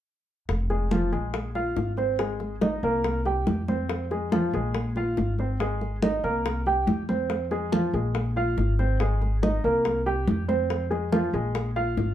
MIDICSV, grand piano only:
0, 0, Header, 1, 2, 480
1, 0, Start_track
1, 0, Key_signature, -4, "minor"
1, 0, Tempo, 425532
1, 548, Time_signature, 4, 2, 24, 8
1, 13696, End_track
2, 0, Start_track
2, 0, Title_t, "Grand piano"
2, 0, Program_c, 0, 0
2, 788, Note_on_c, 0, 56, 56
2, 790, Note_on_c, 0, 68, 55
2, 986, Note_off_c, 0, 56, 0
2, 987, Note_off_c, 0, 68, 0
2, 1030, Note_on_c, 0, 53, 58
2, 1034, Note_on_c, 0, 65, 61
2, 1227, Note_off_c, 0, 53, 0
2, 1230, Note_off_c, 0, 65, 0
2, 1267, Note_on_c, 0, 56, 58
2, 1268, Note_on_c, 0, 68, 53
2, 1663, Note_off_c, 0, 56, 0
2, 1663, Note_off_c, 0, 68, 0
2, 1752, Note_on_c, 0, 77, 58
2, 1754, Note_on_c, 0, 65, 58
2, 2146, Note_off_c, 0, 77, 0
2, 2147, Note_off_c, 0, 65, 0
2, 2227, Note_on_c, 0, 60, 59
2, 2231, Note_on_c, 0, 72, 55
2, 2426, Note_off_c, 0, 60, 0
2, 2429, Note_off_c, 0, 72, 0
2, 2473, Note_on_c, 0, 56, 63
2, 2475, Note_on_c, 0, 68, 53
2, 2867, Note_off_c, 0, 56, 0
2, 2868, Note_off_c, 0, 68, 0
2, 2955, Note_on_c, 0, 63, 54
2, 2957, Note_on_c, 0, 75, 60
2, 3151, Note_off_c, 0, 63, 0
2, 3153, Note_off_c, 0, 75, 0
2, 3195, Note_on_c, 0, 58, 64
2, 3201, Note_on_c, 0, 70, 61
2, 3589, Note_off_c, 0, 58, 0
2, 3592, Note_off_c, 0, 70, 0
2, 3675, Note_on_c, 0, 67, 58
2, 3679, Note_on_c, 0, 79, 59
2, 4069, Note_off_c, 0, 67, 0
2, 4071, Note_off_c, 0, 79, 0
2, 4156, Note_on_c, 0, 60, 60
2, 4159, Note_on_c, 0, 72, 60
2, 4550, Note_off_c, 0, 60, 0
2, 4552, Note_off_c, 0, 72, 0
2, 4639, Note_on_c, 0, 56, 53
2, 4641, Note_on_c, 0, 68, 57
2, 4835, Note_off_c, 0, 56, 0
2, 4836, Note_off_c, 0, 68, 0
2, 4879, Note_on_c, 0, 65, 62
2, 4881, Note_on_c, 0, 53, 62
2, 5075, Note_off_c, 0, 65, 0
2, 5076, Note_off_c, 0, 53, 0
2, 5120, Note_on_c, 0, 56, 62
2, 5124, Note_on_c, 0, 68, 63
2, 5512, Note_off_c, 0, 56, 0
2, 5515, Note_off_c, 0, 68, 0
2, 5601, Note_on_c, 0, 65, 66
2, 5606, Note_on_c, 0, 77, 63
2, 5993, Note_off_c, 0, 65, 0
2, 5996, Note_off_c, 0, 77, 0
2, 6083, Note_on_c, 0, 60, 59
2, 6088, Note_on_c, 0, 72, 59
2, 6277, Note_off_c, 0, 60, 0
2, 6280, Note_off_c, 0, 72, 0
2, 6318, Note_on_c, 0, 56, 61
2, 6322, Note_on_c, 0, 68, 62
2, 6711, Note_off_c, 0, 56, 0
2, 6713, Note_off_c, 0, 68, 0
2, 6800, Note_on_c, 0, 63, 60
2, 6803, Note_on_c, 0, 75, 54
2, 6995, Note_off_c, 0, 63, 0
2, 6997, Note_off_c, 0, 75, 0
2, 7035, Note_on_c, 0, 58, 55
2, 7038, Note_on_c, 0, 70, 63
2, 7429, Note_off_c, 0, 58, 0
2, 7431, Note_off_c, 0, 70, 0
2, 7519, Note_on_c, 0, 67, 57
2, 7521, Note_on_c, 0, 79, 58
2, 7911, Note_off_c, 0, 67, 0
2, 7912, Note_off_c, 0, 79, 0
2, 7995, Note_on_c, 0, 60, 59
2, 7999, Note_on_c, 0, 72, 58
2, 8388, Note_off_c, 0, 60, 0
2, 8391, Note_off_c, 0, 72, 0
2, 8475, Note_on_c, 0, 56, 53
2, 8476, Note_on_c, 0, 68, 61
2, 8672, Note_off_c, 0, 56, 0
2, 8673, Note_off_c, 0, 68, 0
2, 8709, Note_on_c, 0, 53, 62
2, 8712, Note_on_c, 0, 65, 61
2, 8908, Note_off_c, 0, 53, 0
2, 8910, Note_off_c, 0, 65, 0
2, 8955, Note_on_c, 0, 56, 54
2, 8959, Note_on_c, 0, 68, 54
2, 9348, Note_off_c, 0, 56, 0
2, 9350, Note_off_c, 0, 68, 0
2, 9434, Note_on_c, 0, 65, 61
2, 9440, Note_on_c, 0, 77, 64
2, 9827, Note_off_c, 0, 65, 0
2, 9830, Note_off_c, 0, 77, 0
2, 9917, Note_on_c, 0, 60, 63
2, 9917, Note_on_c, 0, 72, 63
2, 10112, Note_off_c, 0, 60, 0
2, 10112, Note_off_c, 0, 72, 0
2, 10154, Note_on_c, 0, 56, 58
2, 10158, Note_on_c, 0, 68, 60
2, 10547, Note_off_c, 0, 56, 0
2, 10549, Note_off_c, 0, 68, 0
2, 10632, Note_on_c, 0, 63, 62
2, 10638, Note_on_c, 0, 75, 58
2, 10829, Note_off_c, 0, 63, 0
2, 10832, Note_off_c, 0, 75, 0
2, 10873, Note_on_c, 0, 58, 61
2, 10880, Note_on_c, 0, 70, 58
2, 11266, Note_off_c, 0, 58, 0
2, 11270, Note_off_c, 0, 70, 0
2, 11350, Note_on_c, 0, 67, 63
2, 11354, Note_on_c, 0, 79, 62
2, 11744, Note_off_c, 0, 67, 0
2, 11746, Note_off_c, 0, 79, 0
2, 11825, Note_on_c, 0, 60, 66
2, 11828, Note_on_c, 0, 72, 66
2, 12221, Note_off_c, 0, 60, 0
2, 12223, Note_off_c, 0, 72, 0
2, 12301, Note_on_c, 0, 56, 62
2, 12303, Note_on_c, 0, 68, 58
2, 12502, Note_off_c, 0, 56, 0
2, 12503, Note_off_c, 0, 68, 0
2, 12546, Note_on_c, 0, 53, 64
2, 12548, Note_on_c, 0, 65, 64
2, 12745, Note_off_c, 0, 53, 0
2, 12746, Note_off_c, 0, 65, 0
2, 12791, Note_on_c, 0, 56, 64
2, 12793, Note_on_c, 0, 68, 58
2, 13184, Note_off_c, 0, 56, 0
2, 13185, Note_off_c, 0, 68, 0
2, 13265, Note_on_c, 0, 65, 56
2, 13268, Note_on_c, 0, 77, 64
2, 13661, Note_off_c, 0, 65, 0
2, 13662, Note_off_c, 0, 77, 0
2, 13696, End_track
0, 0, End_of_file